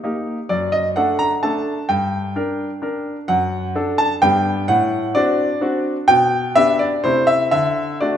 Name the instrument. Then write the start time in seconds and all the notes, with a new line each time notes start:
grand piano
0.04 A#3 D#4 G4
0.49 F#2 D5
0.72 D#5
0.96 A3 D4 A4 F#5
1.19 A#5
1.43 A3 D4 A4 A5
1.89 G2 G5
2.36 D4 A#4
2.82 D4 A#4
3.28 F#2 F#5
3.76 D4 A4
3.98 A5
4.22 G2 B3 D4 G4 G5
4.68 A2 F#5
5.15 C4 D4 F#4 D5
5.61 C4 D4 F#4
6.08 B2 G5
6.55 B3 D4 G4 E5
6.79 D5
7.04 C3 A3 E4 G4 C5
7.27 E5
7.51 D3 E5
8.01 A3 D4 F#4 D5